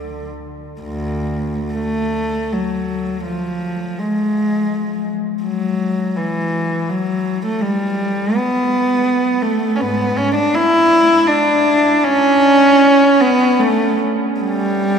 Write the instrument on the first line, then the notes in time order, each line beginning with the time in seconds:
cello
Already playing: D3
0.81 D2
1.74 A3
2.52 F#3
3.24 F3
3.99 G#3
5.43 F#3
6.17 E3
6.89 F#3
7.46 A3
7.61 G3
8.36 B3
9.42 A3
9.76 C#4
9.80 G#2 B3
10.17 C#4
10.35 D4
10.55 E4
11.27 D4
12.04 C#4
13.21 B3
13.59 A3
14.40 G3